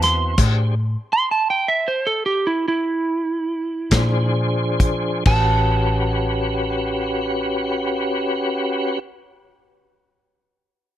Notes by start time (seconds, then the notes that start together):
Already playing: E2 B3 C4 E4 F#4
0.02 C6, snare, closed hi-hat
0.38 A2 D4 G4 G#4 C5, kick, closed hi-hat, crash
1.13 C6
1.31 A5
1.50 G5
1.68 E5
1.88 C5
2.07 A4
2.26 G4
2.47 E4
2.68 E4
3.91 A#2 F3 D4 G#4 C5, kick, snare, closed hi-hat
4.80 kick, closed hi-hat
5.25 A1 C#4 F#4 G4 B4 A5, kick, crash